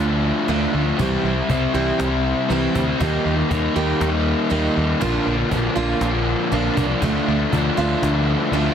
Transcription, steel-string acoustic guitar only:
0.48 D3 A3 D4 F4
0.99 E3 G3 C4 G4
1.74 E3 G3 C4 G4
2.50 E3 G3 C4 G4
3.00 D#3 A#3 D#4 G4
3.76 D#3 A#3 D#4 G4
4.50 D#3 A#3 D#4 G4
5.01 D3 A#3 D4 F4
5.76 D3 A#3 D4 F4
6.52 D3 A#3 D4 F4
7.03 D3 A3 D4 F4
7.77 D3 A3 D4 F4
8.53 D3 A3 D4 F4

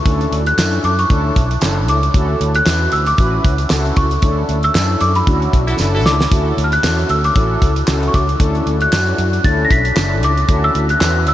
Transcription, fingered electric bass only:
0.06 D2
0.32 D2
0.58 F#2
0.84 F#2
1.10 D2
1.36 B1
1.62 F#1
1.88 C#2
2.14 D2
2.41 D2
2.66 E2
2.92 D2
3.18 A1
3.44 C#2
3.70 C#2
3.97 C#2
4.23 D2
4.49 D2
4.75 F#2
5.01 F#2
5.27 D2
5.53 B1
5.79 F#1
6.05 C#2
6.32 D2
6.57 D2
6.83 E2
7.10 D2
7.36 A1
7.62 C#2
7.88 C#2
8.14 C#2
8.40 D2
8.66 D2
8.92 F#2
9.18 F#2
9.44 D2
9.71 B1
9.97 F#1
10.23 C#2
10.49 D2
10.75 D2
11.01 E2
11.27 D2

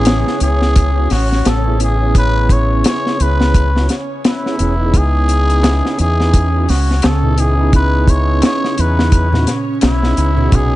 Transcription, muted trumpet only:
Already playing: G#4
0.42 G#4
1.13 F#4
1.48 A4
1.83 G#4
2.18 B4
2.52 C#5
2.86 C#5
3.22 B4
4.27 E4
4.97 G#4
6.01 G#4
6.70 F#4
7.06 A4
7.39 G#4
7.75 B4
8.10 C#5
8.45 C#5
8.81 B4
9.85 E4
10.55 G#4

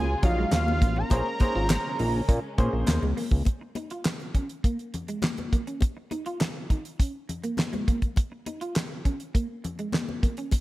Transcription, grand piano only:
0.22 F#3 D#4 F4 C#5
1.10 A#3 C#4 G#4 C5
1.40 A#3 C#4 G#4 C5
2.58 A#3 C#4 G#4 C5

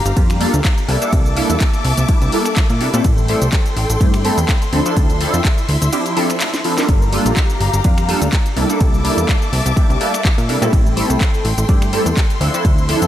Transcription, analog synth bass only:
0.06 G1
0.17 F2
0.54 D2
0.88 C2
1.13 C2
1.50 E2
1.85 C2
1.98 C2
2.22 C2
2.70 A#2
2.81 C3
2.94 A#2
3.05 A1
3.42 C2
3.77 A1
3.90 A1
4.01 G2
4.38 E2
4.73 D2
4.97 D2
5.34 F2
5.69 D2
5.82 D2
6.89 G1
7.26 A#1
7.60 G1
7.74 G1
7.85 F2
8.22 D2
8.57 C2
8.81 C2
9.18 E2
9.53 C2
9.66 C2
9.90 C2
10.38 A#2
10.49 C3
10.62 A#2
10.73 A1
11.10 C2
11.45 A1
11.58 A1
11.69 G2
12.06 E2
12.41 D2
12.65 D2
13.02 F2

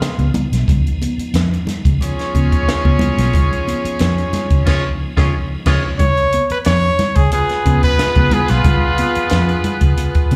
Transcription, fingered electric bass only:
0.01 muted fingered electric bass stroke
0.18 C#2
0.52 B1
0.68 C#2
1.18 muted fingered electric bass stroke
1.34 F2
1.85 C#2
2.35 C#3
2.67 muted fingered electric bass stroke
2.85 C#2
3.18 B1
3.34 C#2
3.85 muted fingered electric bass stroke
4.00 F2
4.51 C#2
4.66 C#2
5.17 C#2
5.66 C#2
5.99 C#2
6.50 muted fingered electric bass stroke
6.66 F2
7.16 C#2
7.66 C#3
7.98 muted fingered electric bass stroke
8.16 C#2
8.50 B1
8.65 C#2
9.16 muted fingered electric bass stroke
9.32 F2
9.81 C#2
10.32 C#3

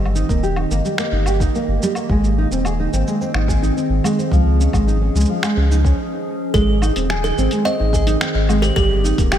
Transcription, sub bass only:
Already playing: G1
0.29 D#1
0.71 G1
1.12 G1
1.68 G1
2.10 G#1
2.51 D#1
2.93 G#1
3.34 G#1
3.90 G#1
4.32 C#2
4.74 G#1
5.15 C#2
5.57 C#2
6.54 G#1
6.96 D#1
7.38 G#1
7.80 G#1
8.35 G#1
8.77 G1
9.19 D#1

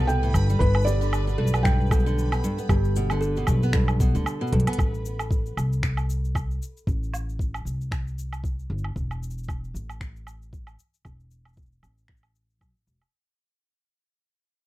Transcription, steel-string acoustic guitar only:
Already playing: B2
0.23 A2
0.35 G2
0.50 G3
0.61 G2
0.87 B2
1.01 D3
1.27 B2
1.38 G2
1.53 B3
1.65 G2
1.91 B2
2.06 D3
2.32 B2
2.44 G2
2.58 B3
2.70 G2
2.96 B2
3.11 D3
3.37 B2
3.48 G2
3.63 B3
3.75 G2
4.01 B2
4.15 D3
4.41 B2
4.53 G2
4.67 B3

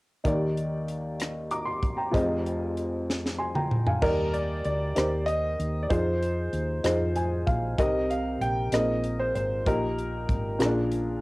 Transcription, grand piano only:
4.02 A#4
4.33 D5
4.65 D5
5.26 D#5
5.83 D5
5.90 C5
7.80 D#5
8.10 F5
8.41 G5
8.74 D#5
9.20 C5
9.35 C5
9.67 A#4

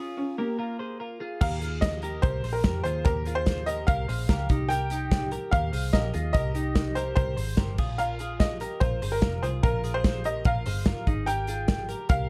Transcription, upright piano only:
Already playing: C#4
0.17 C#4
0.38 A#3
1.41 F5
1.81 D#5
2.22 C5
2.53 A#4
2.83 C5
3.05 A#4
3.35 C5
3.66 D#5
3.87 F5
4.69 G5
5.51 F5
5.93 D#5
6.33 D#5
6.95 C5
7.15 C5
7.98 F5
8.40 D#5
8.80 C5
9.12 A#4
9.42 C5
9.63 A#4
9.94 C5
10.25 D#5
10.46 F5
11.26 G5
12.09 F5

